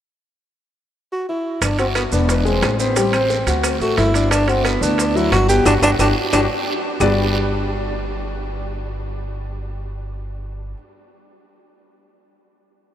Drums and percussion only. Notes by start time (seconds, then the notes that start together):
1.62 high bongo, high timbale, long guiro, claves, maracas
1.79 high timbale, maracas
1.95 high bongo, high timbale, short guiro, claves, maracas
2.12 short guiro, maracas
2.29 high bongo, high timbale, long guiro, maracas
2.46 maracas
2.62 high bongo, low bongo, high timbale, low timbale, short guiro, claves, maracas
2.79 short guiro, maracas
2.96 high bongo, high timbale, long guiro, maracas
3.13 high bongo, high timbale, claves, maracas
3.30 high bongo, short guiro, maracas
3.47 high timbale, short guiro, maracas
3.63 high bongo, high timbale, long guiro, claves, maracas
3.80 high bongo, maracas
3.97 high bongo, low bongo, high timbale, short guiro, maracas
4.14 high bongo, high timbale, short guiro, maracas
4.31 high bongo, high timbale, long guiro, claves, maracas
4.48 high timbale, maracas
4.65 high bongo, high timbale, short guiro, claves, maracas
4.83 short guiro, maracas
4.98 high bongo, high timbale, long guiro, maracas
5.17 maracas
5.32 high bongo, low bongo, high timbale, short guiro, claves, maracas
5.49 short guiro, maracas
5.65 high bongo, high timbale, long guiro, claves, maracas
5.82 high bongo, high timbale, long guiro, claves, maracas
5.99 high bongo, high timbale, long guiro, claves, maracas
6.33 high bongo, high timbale, long guiro, claves, maracas
7.01 low bongo, low timbale, long guiro, claves, maracas